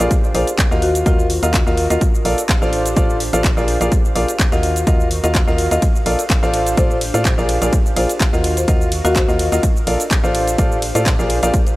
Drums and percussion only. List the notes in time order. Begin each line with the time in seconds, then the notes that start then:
0.00 cabasa
0.11 kick, closed hi-hat, cabasa
0.24 cabasa
0.35 open hi-hat
0.47 closed hi-hat, cabasa
0.58 kick, clap, closed hi-hat, cabasa
0.72 cabasa
0.82 open hi-hat
0.95 closed hi-hat, cabasa
1.06 kick, closed hi-hat, cabasa
1.19 cabasa
1.30 open hi-hat
1.43 closed hi-hat, cabasa
1.54 kick, clap, closed hi-hat, cabasa
1.67 cabasa
1.77 open hi-hat
1.90 closed hi-hat, cabasa
2.01 kick, closed hi-hat, cabasa
2.15 cabasa
2.25 open hi-hat
2.38 closed hi-hat, cabasa
2.49 kick, clap, closed hi-hat, cabasa
2.62 cabasa
2.73 open hi-hat
2.86 closed hi-hat, cabasa
2.96 kick, closed hi-hat, cabasa
3.10 cabasa
3.20 open hi-hat
3.33 closed hi-hat, cabasa
3.44 kick, clap, closed hi-hat, cabasa
3.57 cabasa
3.68 open hi-hat
3.81 closed hi-hat, cabasa
3.92 kick, closed hi-hat, cabasa
4.05 cabasa
4.16 open hi-hat
4.28 closed hi-hat, cabasa
4.39 kick, clap, closed hi-hat, cabasa
4.52 closed hi-hat, cabasa
4.63 open hi-hat
4.76 closed hi-hat, cabasa
4.87 kick, closed hi-hat, cabasa
5.00 cabasa
5.11 open hi-hat
5.24 closed hi-hat, cabasa
5.35 kick, clap, closed hi-hat, cabasa
5.48 cabasa
5.58 open hi-hat
5.71 closed hi-hat, cabasa
5.82 kick, closed hi-hat, ride, cabasa
5.96 cabasa
6.06 open hi-hat, ride
6.19 closed hi-hat, cabasa
6.30 kick, clap, closed hi-hat, ride, cabasa
6.43 cabasa
6.54 open hi-hat, ride
6.67 closed hi-hat, cabasa
6.77 kick, closed hi-hat, ride, cabasa
6.91 cabasa
7.01 open hi-hat, ride
7.14 closed hi-hat, cabasa
7.25 kick, clap, closed hi-hat, ride, cabasa
7.38 cabasa
7.49 open hi-hat, ride
7.62 closed hi-hat, cabasa
7.73 kick, closed hi-hat, ride, cabasa
7.86 cabasa
7.96 open hi-hat, ride
8.09 closed hi-hat, cabasa
8.20 kick, clap, closed hi-hat, ride, cabasa
8.34 cabasa
8.44 open hi-hat, ride
8.57 closed hi-hat, cabasa
8.68 kick, closed hi-hat, ride, cabasa
8.81 cabasa
8.92 open hi-hat, ride
9.05 closed hi-hat, cabasa
9.16 kick, clap, closed hi-hat, ride, cabasa
9.29 cabasa
9.39 open hi-hat, ride
9.52 closed hi-hat, cabasa
9.63 kick, closed hi-hat, ride, cabasa
9.77 cabasa
9.87 open hi-hat, ride
10.00 closed hi-hat, cabasa
10.11 kick, clap, closed hi-hat, ride, cabasa
10.24 cabasa
10.35 open hi-hat, ride
10.48 closed hi-hat, cabasa
10.58 kick, closed hi-hat, ride, cabasa
10.72 cabasa
10.82 open hi-hat, ride
10.95 closed hi-hat, cabasa
11.06 kick, clap, closed hi-hat, ride, cabasa
11.19 cabasa
11.30 open hi-hat, ride
11.43 closed hi-hat, cabasa
11.54 kick, closed hi-hat, ride, cabasa
11.67 closed hi-hat, cabasa